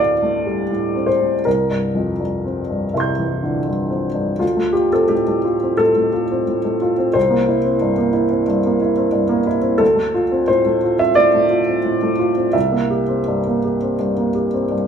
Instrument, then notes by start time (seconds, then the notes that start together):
upright piano
Already playing: D2 G2 A2 C4 D5 F5
0.22 A3
0.46 G3
0.71 A2
0.95 C4
1.06 C5
1.21 A2
1.45 C2 A#4
1.70 G2
1.95 F2
2.20 G2
2.45 C4
2.69 G2
2.94 C2 E5 C6
3.00 G6
3.19 E3
3.43 D3
3.66 G2
3.90 C4
4.14 G2
4.39 D2 F4
4.57 A3
4.73 F4 G4
4.92 C4 A4
5.08 A2 G4
5.28 A3
5.45 F4
5.62 C4
5.77 A2 A4
5.96 A3
6.13 F4
6.31 C4
6.48 A2
6.64 A3
6.82 F4
6.98 C4
7.13 C2 C5
7.30 A#3
7.49 E4
7.65 C4
7.81 G2
7.98 A#3
8.13 E4
8.31 C4
8.48 G2
8.66 A#3
8.81 E4
8.97 C4
9.12 G2
9.29 A#3
9.47 E4
9.62 C4
9.78 D2 A4
9.95 A3
10.14 F4
10.32 C4
10.48 A2 C5
10.66 A3
10.83 F4
10.99 C4 E5
11.15 A2 D5
11.34 A3
11.50 F4
11.67 C4
11.84 A2
12.02 A3
12.19 F4
12.37 C4
12.53 C2 E5
12.72 A#3
12.90 G4
13.09 C4
13.28 G2
13.47 A#3
13.64 G4
13.82 C4
13.99 G2
14.18 A#3
14.35 G4
14.54 C4
14.71 G2